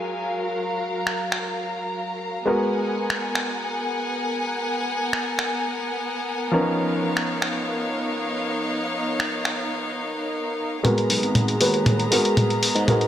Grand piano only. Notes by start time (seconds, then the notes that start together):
Already playing: G#3 F4 F#4 A#4
2.46 G#3 B3 F#4 A#4
6.51 F3 B3 C#4 D#4 A#4
10.83 G#3 B3 F#4 A#4
11.60 G#3 B3 F#4 B4
12.11 G#3 B3 F#4 A#4
12.88 G#3 B3 F#4 A#4